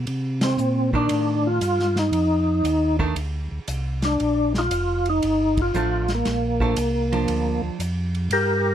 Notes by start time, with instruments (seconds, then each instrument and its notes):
0.07 tonewheel organ C3, ride
0.41 tonewheel organ C4, snare, ride
0.58 tonewheel organ A#2, hi-hat pedal
0.93 hollow-body jazz guitar D#3 D4, tonewheel organ D4, kick
1.09 tonewheel organ A2, ride
1.47 tonewheel organ F4
1.61 tonewheel organ G2, hi-hat pedal, ride
1.79 snare
1.96 tonewheel organ D#4, snare, ride
2.12 tonewheel organ F2, ride
2.64 tonewheel organ D#2, hi-hat pedal, ride
2.99 hollow-body jazz guitar D#3 A3 D4, kick
3.16 tonewheel organ D2, ride
3.51 tonewheel organ D2
3.68 tonewheel organ C2, hi-hat pedal, ride
4.02 tonewheel organ D4, snare, ride
4.20 tonewheel organ A#1, ride
4.54 tonewheel organ F4, snare
4.59 tonewheel organ D#4
4.71 tonewheel organ F1, hi-hat pedal, ride
5.06 tonewheel organ D#4, ride
5.22 tonewheel organ G1, ride
5.57 kick, ride
5.62 tonewheel organ F4
5.74 tonewheel organ A1, hollow-body jazz guitar F3 A3 D4, hi-hat pedal
6.08 snare, ride
6.15 tonewheel organ A#3
6.25 tonewheel organ A#1, snare, ride
6.60 hollow-body jazz guitar F3 A3 D4, kick
6.76 tonewheel organ C2, hi-hat pedal, ride
7.12 hollow-body jazz guitar F3 D4, ride
7.28 tonewheel organ D2, ride
7.63 tonewheel organ D2
7.79 tonewheel organ F2, hi-hat pedal, ride
8.15 ride
8.30 tonewheel organ G2 G4 A#4, ride